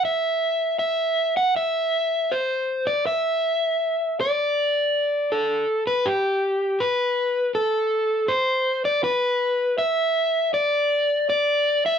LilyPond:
\new Staff \with { instrumentName = "Overdriven electric guitar" } { \time 4/4 \key e \minor \tempo 4 = 80 e''4 e''8. fis''16 e''4 c''8. d''16 | e''4. d''4. a'8. b'16 | g'4 b'4 a'4 c''8. d''16 | b'4 e''4 d''4 d''8. e''16 | }